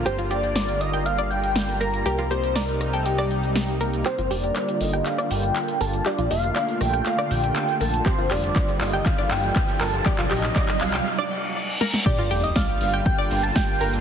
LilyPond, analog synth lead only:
\new Staff \with { instrumentName = "Analog synth lead" } { \time 4/4 \key g \minor \tempo 4 = 120 c''8 d''4 ees''8 f''8 g''4 bes''8 | bes'8 c''8 bes'8. a'16 g'4. r8 | c''8 d''4 ees''8 f''8 g''4 a''8 | d''8 f''4 g''8 f''8 g''4 a''8 |
c''8 d''4 ees''8 f''8 g''4 a''8 | d''8 ees''4 f''8 r2 | d''8. ees''16 f''4 g''8. a''16 g''8. r16 | }